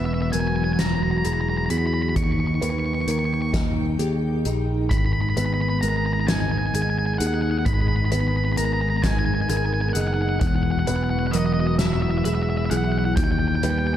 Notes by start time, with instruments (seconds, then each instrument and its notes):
Already playing: picked electric bass E1, clean electric guitar E2 B3, ambient pad E3 F#3 B3 F#4, felt piano B4
0.05 lead electric guitar E5
0.14 lead electric guitar E5
0.22 lead electric guitar E5
0.32 picked electric bass E1, clean electric guitar F#3, felt piano A#4, lead electric guitar G#5, closed hi-hat
0.40 lead electric guitar G#5
0.48 lead electric guitar G#5
0.56 lead electric guitar G#5
0.64 lead electric guitar G#5
0.73 lead electric guitar G#5
0.78 clean electric guitar F#4, lead electric guitar A#5, snare, closed hi-hat
0.87 lead electric guitar A#5
0.95 lead electric guitar A#5
1.03 lead electric guitar A#5
1.11 lead electric guitar A#5
1.18 lead electric guitar A#5
1.24 picked electric bass E1, clean electric guitar E4, felt piano G#4, lead electric guitar A#5, closed hi-hat
1.33 lead electric guitar A#5
1.41 lead electric guitar A#5
1.49 lead electric guitar A#5
1.57 lead electric guitar A#5
1.66 clean electric guitar F#4, lead electric guitar A#5
1.70 picked electric bass E2, felt piano G#4, lead electric guitar B5, closed hi-hat
1.78 lead electric guitar B5
1.87 lead electric guitar B5
1.94 lead electric guitar B5
2.02 lead electric guitar B5
2.09 lead electric guitar B5
2.15 picked electric bass D#2, clean electric guitar D#3, ambient pad D#3 G5, lead electric guitar C#6, kick, closed hi-hat
2.24 lead electric guitar C#6
2.32 lead electric guitar C#6
2.40 lead electric guitar C#6
2.47 lead electric guitar C#6
2.55 lead electric guitar C#6
2.61 picked electric bass D#2, clean electric guitar A#3, felt piano B4, lead electric guitar C#6, closed hi-hat
2.70 lead electric guitar C#6
2.79 lead electric guitar C#6
2.86 lead electric guitar C#6
2.94 lead electric guitar C#6
3.01 lead electric guitar C#6
3.08 picked electric bass D#2, felt piano A#4, lead electric guitar C#6, closed hi-hat
3.19 lead electric guitar C#6
3.25 lead electric guitar C#6
3.34 lead electric guitar C#6
3.42 lead electric guitar C#6
3.53 clean electric guitar D#4, kick, snare, closed hi-hat
3.99 picked electric bass D#2, clean electric guitar G4, felt piano G#4, closed hi-hat
4.45 picked electric bass A#1, clean electric guitar D#4, felt piano G#4, closed hi-hat
4.90 picked electric bass G#1, clean electric guitar G#2, ambient pad B3 G#4, lead electric guitar B5, kick, closed hi-hat
4.98 lead electric guitar B5
5.06 lead electric guitar B5
5.13 lead electric guitar B5
5.21 lead electric guitar B5
5.30 lead electric guitar B5
5.37 picked electric bass G#1, clean electric guitar B3, felt piano B4, lead electric guitar B5, closed hi-hat
5.46 lead electric guitar B5
5.54 lead electric guitar B5
5.61 lead electric guitar B5
5.69 lead electric guitar B5
5.81 picked electric bass G#1, clean electric guitar G#3, felt piano A#4, lead electric guitar A#5, closed hi-hat
5.89 lead electric guitar A#5
5.97 lead electric guitar A#5
6.06 lead electric guitar A#5
6.13 lead electric guitar A#5
6.21 lead electric guitar A#5
6.27 clean electric guitar D#4, lead electric guitar G#5, snare, closed hi-hat
6.35 lead electric guitar G#5
6.40 lead electric guitar G#5
6.51 lead electric guitar G#5
6.58 lead electric guitar G#5
6.66 lead electric guitar G#5
6.74 picked electric bass G#1, felt piano G#4, lead electric guitar G#5, closed hi-hat
6.82 lead electric guitar G#5
6.90 lead electric guitar G#5
6.99 lead electric guitar G#5
7.06 lead electric guitar G#5
7.14 lead electric guitar G#5
7.18 picked electric bass D#2, clean electric guitar D#4, felt piano G#4, lead electric guitar F#5, closed hi-hat
7.27 lead electric guitar F#5
7.34 lead electric guitar F#5
7.42 lead electric guitar F#5
7.51 lead electric guitar F#5
7.58 lead electric guitar F#5
7.65 picked electric bass G#1, clean electric guitar G#2, lead electric guitar B5, kick, closed hi-hat
7.74 lead electric guitar B5
7.81 lead electric guitar B5
7.88 lead electric guitar B5
7.96 lead electric guitar B5
8.05 lead electric guitar B5
8.12 picked electric bass G#1, clean electric guitar B3, felt piano B4, lead electric guitar B5, closed hi-hat
8.20 lead electric guitar B5
8.28 lead electric guitar B5
8.37 lead electric guitar B5
8.45 lead electric guitar B5
8.53 lead electric guitar B5
8.57 picked electric bass G#1, clean electric guitar G#3, felt piano A#4, lead electric guitar A#5, closed hi-hat
8.65 lead electric guitar A#5
8.73 lead electric guitar A#5
8.81 lead electric guitar A#5
8.90 lead electric guitar A#5
8.97 lead electric guitar A#5
9.02 clean electric guitar D#4, lead electric guitar G#5, kick, snare, closed hi-hat
9.11 lead electric guitar G#5
9.19 lead electric guitar G#5
9.25 lead electric guitar G#5
9.35 lead electric guitar G#5
9.41 lead electric guitar G#5
9.49 picked electric bass G#1, felt piano G#4, clean electric guitar A#4, lead electric guitar G#5, closed hi-hat
9.57 lead electric guitar G#5
9.66 lead electric guitar G#5
9.74 lead electric guitar G#5
9.81 lead electric guitar G#5
9.89 lead electric guitar F#5 G#5
9.95 picked electric bass F#1, clean electric guitar D#4, felt piano G#4, closed hi-hat
10.01 lead electric guitar F#5
10.07 lead electric guitar F#5
10.14 lead electric guitar F#5
10.22 lead electric guitar F#5
10.29 lead electric guitar F#5
10.40 picked electric bass E1, clean electric guitar E2, ambient pad E3 F#3 F#4, lead electric guitar F#5, kick, closed hi-hat
10.47 lead electric guitar F#5
10.56 lead electric guitar F#5
10.63 lead electric guitar F#5
10.71 lead electric guitar F#5
10.79 lead electric guitar F#5
10.87 picked electric bass E1, clean electric guitar B3, felt piano B4, lead electric guitar F#5, closed hi-hat
10.96 lead electric guitar F#5
11.04 lead electric guitar F#5
11.10 lead electric guitar F#5
11.19 lead electric guitar F#5
11.27 lead electric guitar F#5
11.31 picked electric bass E1, clean electric guitar F#3, felt piano A#4, lead electric guitar D#5, closed hi-hat
11.39 lead electric guitar D#5
11.46 lead electric guitar D#5
11.53 lead electric guitar D#5
11.60 lead electric guitar D#5
11.67 lead electric guitar D#5
11.79 clean electric guitar E4, lead electric guitar E5, snare, closed hi-hat
11.87 lead electric guitar E5
11.93 lead electric guitar E5
12.02 lead electric guitar E5
12.11 lead electric guitar E5
12.18 lead electric guitar E5
12.24 picked electric bass E1, felt piano G#4, clean electric guitar B4, lead electric guitar E5, closed hi-hat
12.35 lead electric guitar E5
12.43 lead electric guitar E5
12.50 lead electric guitar E5
12.57 lead electric guitar E5
12.66 lead electric guitar E5
12.70 picked electric bass B1, clean electric guitar E4, felt piano G#4, lead electric guitar F#5, closed hi-hat
12.77 lead electric guitar F#5
12.85 lead electric guitar F#5
12.92 lead electric guitar F#5
12.99 lead electric guitar F#5
13.05 lead electric guitar F#5
13.16 picked electric bass D#2, ambient pad A#2 D#3 G5, clean electric guitar D#3, lead electric guitar G5, kick, closed hi-hat
13.24 lead electric guitar G5
13.32 lead electric guitar G5
13.39 lead electric guitar G5
13.48 lead electric guitar G5
13.55 lead electric guitar G5
13.62 picked electric bass D#2, clean electric guitar G3, felt piano B4, lead electric guitar G5, closed hi-hat
13.70 lead electric guitar G5
13.79 lead electric guitar G5
13.87 lead electric guitar G5